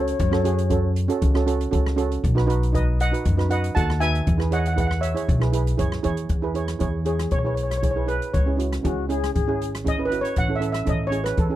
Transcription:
Already playing: C#2 C#4 F#4 A4 C#5
0.08 closed hi-hat
0.19 F#2, kick, closed hi-hat
0.32 C#4 F#4 A4, cross-stick
0.44 C#4 F#4 G#4, closed hi-hat
0.58 closed hi-hat
0.70 C#4 F#4 A4, kick, closed hi-hat
0.96 closed hi-hat
1.08 C#4 F#4 A4, closed hi-hat
1.22 C#2, kick, closed hi-hat
1.34 C#4 F#4 A4, cross-stick
1.46 C#4 F#4 A4, closed hi-hat
1.61 closed hi-hat
1.71 C#2 C#4 F#4 A4, kick, closed hi-hat
1.86 cross-stick
1.96 C#4 F#4 A4, closed hi-hat
2.12 closed hi-hat
2.24 B1, kick, closed hi-hat
2.35 D#4 F#4 B4, cross-stick
2.46 D#4 F#4 B4, closed hi-hat
2.63 closed hi-hat
2.73 D#4 F#4 B4 D#5, kick, closed hi-hat
3.00 D#5 F#5, closed hi-hat
3.12 D#4 F#4 B4, closed hi-hat
3.25 F#2, kick, closed hi-hat
3.37 D#4 F#4 B4, cross-stick
3.49 D#4 F#4 B4 D#5 F#5, closed hi-hat
3.64 closed hi-hat
3.75 D#2 D#4 F#4 A4 F#5 A5, kick, closed hi-hat
3.90 cross-stick
4.00 D#4 F#4 B4 E5 G#5, closed hi-hat
4.15 closed hi-hat
4.27 E2, kick, closed hi-hat
4.38 E4 G#4 B4, cross-stick
4.51 E4 G#4 C#5 D#5 F#5, closed hi-hat
4.59 F#5
4.66 F#5, closed hi-hat
4.73 E4 F#5
4.77 G#4 B4 F#5, kick, closed hi-hat
4.87 F#5, cross-stick
5.01 C#5 E5, closed hi-hat
5.14 E4 G#4 C#5, closed hi-hat
5.28 B1, kick, closed hi-hat
5.40 E4 G#4 B4, cross-stick
5.52 E4 G#4 B4, closed hi-hat
5.67 closed hi-hat
5.77 F#2 E4 G#4 C#5, kick, closed hi-hat
5.92 cross-stick
6.03 E2 E4 G#4 C#5, closed hi-hat
6.17 closed hi-hat
6.29 E2, kick, closed hi-hat
6.42 E4 G#4 B4
6.54 E4 G#4 C#5, closed hi-hat
6.68 cross-stick, closed hi-hat
6.79 E2 E4 G#4 C#5, kick, closed hi-hat
7.05 E4 G#4 C#5, closed hi-hat
7.19 cross-stick, closed hi-hat
7.31 B1 C#5, kick, closed hi-hat
7.39 C#5
7.44 E4 G#4 B4 C#5
7.55 C#5, closed hi-hat
7.63 C#5
7.70 C#5, cross-stick, closed hi-hat
7.77 C#5
7.82 E4 G#4 C#5, kick, closed hi-hat
7.91 C#5
7.96 E4 G#4 B4
8.06 E4 G#4 B4, closed hi-hat
8.22 closed hi-hat
8.34 C#2 C#5, kick, closed hi-hat
8.46 C#4 E4 G#4
8.57 C#4 E4 F#4, closed hi-hat
8.73 cross-stick, closed hi-hat
8.83 C#2 C#4 E4 F#4 G#4, kick, closed hi-hat
9.09 C#4 E4 G#4, closed hi-hat
9.24 cross-stick, closed hi-hat
9.34 G#1 G#4, kick, closed hi-hat
9.47 C#4 E4 G#4
9.62 closed hi-hat
9.75 cross-stick, closed hi-hat
9.84 C#4 E4 G#4, kick, closed hi-hat
9.88 D#5
9.98 C#4 E4 B4
10.05 B4
10.10 C#4 E4 F#4, closed hi-hat
10.21 C#5, closed hi-hat
10.36 A1 F#5, kick, closed hi-hat
10.48 C#4 E4 A4
10.56 E5
10.60 C#4 E4 A4, closed hi-hat
10.72 E5, cross-stick, closed hi-hat
10.85 A1 C#4 E4 A4, kick, closed hi-hat
10.89 D#5
11.07 C#4 C#5
11.12 E4 G#4, closed hi-hat
11.24 B4, cross-stick, closed hi-hat
11.37 E2 A4, kick, closed hi-hat
11.49 C#4 E4 G#4

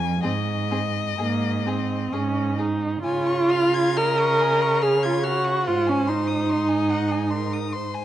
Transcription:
Already playing: F2 G#5
0.23 G#2 C4 G#4 D#5
0.71 C4 G#4
1.18 G#2 A#3 G#4
1.66 C4 G#4
2.13 G#2 C#4 G#4
2.58 D#4 G#4
3.03 C#3 F4 C#5 G#5
3.26 C#6
3.51 F5 F6
3.74 G#6
3.97 A#4 D#5 F6
4.20 C#6
4.42 G#5
4.62 C#6
4.81 G#4 C#5 F6
5.03 F4 G#6
5.24 F#4 F6
5.44 C#6
5.66 G#2 F4 C5 F#5
5.86 C#4 G#5
6.07 D#4 C6
6.27 D#6
6.49 D#5 C6
6.69 G#5
6.90 F#5
7.11 G#5
7.30 A#4 C6
7.53 D#6
7.73 C5 C6
7.94 G#5

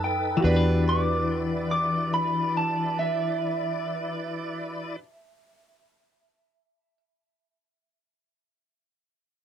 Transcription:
Already playing: F#2 D#4 A4 B4 D6
0.04 G5
0.37 E3 F#4
0.42 E2 D4 E4 G4 B4 D5
0.47 D5
0.56 B4
0.89 D6
1.71 D6
2.14 B5
2.57 A5
2.99 E5

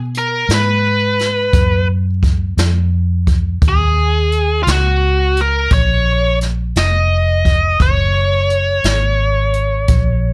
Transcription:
Already playing: B2
0.14 A#4, closed hi-hat
0.49 G#2, snare, closed hi-hat
0.54 B4
1.19 snare, closed hi-hat
1.53 F#2, kick, closed hi-hat
2.23 kick, closed hi-hat
2.57 F2, snare, closed hi-hat
3.27 kick, closed hi-hat
3.62 D#2, kick, closed hi-hat
3.68 G#4
4.32 closed hi-hat
4.63 C#2 F4, closed hi-hat
4.68 F#4, snare
5.37 closed hi-hat
5.41 A#4
5.71 A#1 C#5, kick, closed hi-hat
6.41 snare, closed hi-hat
6.75 F1 D#5, snare, closed hi-hat
7.45 kick, closed hi-hat
7.80 F#1 C#5, kick, closed hi-hat
8.50 closed hi-hat
8.84 G#1, snare, closed hi-hat
9.53 closed hi-hat
9.88 A#1, kick, closed hi-hat

